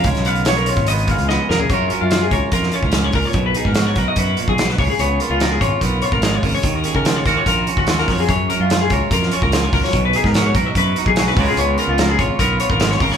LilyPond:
<<
  \new Staff \with { instrumentName = "Clean electric guitar" } { \time 4/4 \key fis \major \tempo 4 = 146 cis''8 eis''8 cis''16 ais'16 cis''8 dis''8 eis''8 dis''8 ais'16 gis'16 | cis''8 ais'16 eis'8 gis'16 cis''8 ais'8 cis''16 ais'8 cis''16 ais'16 cis''16~ | cis''16 b'16 gis'16 ais'8 cis''16 b'16 dis''16 b'8 r16 gis'8 b'16 cis''16 gis'16 | cis''8 ais'16 eis'8 gis'16 cis''8 ais'8 cis''16 ais'8 cis''16 ais'16 cis''16~ |
cis''16 ais'16 gis'16 ais'8 cis''16 ais'16 cis''16 ais'8 r16 fis'8 ais'16 cis''16 gis'16 | cis''8 ais'16 eis'8 gis'16 cis''8 ais'8 cis''16 ais'8 cis''16 ais'16 cis''16~ | cis''16 b'16 gis'16 ais'8 cis''16 b'16 dis''16 b'8 r16 gis'8 b'16 cis''16 gis'16 | cis''8 ais'16 eis'8 gis'16 cis''8 ais'8 cis''16 ais'8 cis''16 ais'16 cis''16 | }
  \new Staff \with { instrumentName = "Clean electric guitar" } { \time 4/4 \key fis \major << { ais'8 b8 cis''8 eis'8 b4 b8 ais'8 | <fis cis' eis' ais'>8 cis'8 eis'8 ais'8 eis'8 cis'4. | r8 dis'8 fis'8 ais'8 fis'4. r8 | b8 eis'8 ais'8 eis'8 b8 eis'4 r8 |
r8 cis'8 eis'8 fis'8 eis'8 cis'8 eis'4 | r8 cis'8 eis'8 ais'8 eis'8 cis'8 eis'4 | r8 dis'8 fis'8 ais'8 fis'8 dis'8 fis'8 <gis b eis' ais'>8 | b8 eis'8 ais'8 eis'8 b8 eis'4 r8 | } \\ { <cis gis>2~ <cis gis>8 gis4 cis8 | fis,2. gis,8 ais,8 | b,2~ b,8 ais,8 b,8 cis8~ | cis2. gis8 cis8 |
dis2.~ dis8 fis8 | fis,2.~ fis,8 fis8 | b,2.~ b,8 cis8~ | cis2. gis8 cis8 | } >> }
  \new Staff \with { instrumentName = "Fingered electric bass" } { \clef bass \time 4/4 \key fis \major cis,16 b,,4. gis,,4 cis,8 r16 eis,16 r16 | fis,8 r16 fis,8. cis,16 r16 eis,8 r16 cis,8. cis,16 r16 | b,,8 r16 gis,8. b,,16 r16 fis,8 r16 b,,8. cis,16 r16 | cis,8 r16 cis,8. gis,,16 r16 b,,8 r16 gis,,8. gis,,16 r16 |
dis,8 r16 cis8. dis,16 r16 ais,,8 r16 dis,8. eis,8 | fis,8 r16 fis,8. cis,16 r16 eis,8 r16 cis,8. cis,16 r16 | b,,8 r16 gis,8. b,,16 r16 fis,8 r16 b,,8. cis,16 r16 | cis,8 r16 cis,8. gis,,16 r16 b,,8 r16 gis,,8. gis,,16 r16 | }
  \new DrumStaff \with { instrumentName = "Drums" } \drummode { \time 4/4 <hh bd>16 <hh sn>16 hh16 hh16 <hh sn>16 hh16 hh16 bd16 hh16 hh16 <hh bd>16 hh16 sn8 sn16 tomfh16 | <hh bd>8 hh8 <hh sn>8 <hh bd>8 <hh bd>16 sn16 hh16 bd16 <hh sn>8 <hho bd>8 | <hh bd>8 hh16 bd16 <hh sn>8 <hh bd>8 <hh bd>8 hh16 bd16 <hh sn>16 sn16 <hho bd>8 | hh8 hh8 <hh sn>8 <hh bd>8 <hh bd>8 hh16 bd16 <hh sn>8 <hho bd>8 |
<hh bd>8 hh16 bd16 <hh sn>8 <hh bd sn>8 <hh bd>8 hh16 bd16 <hh sn>16 sn16 <hho bd sn>8 | <hh bd>8 hh8 <hh sn>8 <hh bd>8 <hh bd>16 sn16 hh16 bd16 <hh sn>8 <hho bd>16 sn16 | <hh bd>8 hh16 <bd sn>16 <hh sn>8 <hh bd>8 <hh bd>8 hh16 bd16 <hh sn>16 sn16 <hho bd>8 | hh8 hh8 <hh sn>8 <hh bd>8 <hh bd>8 hh16 bd16 <hh sn>16 sn16 <hho bd>16 sn16 | }
>>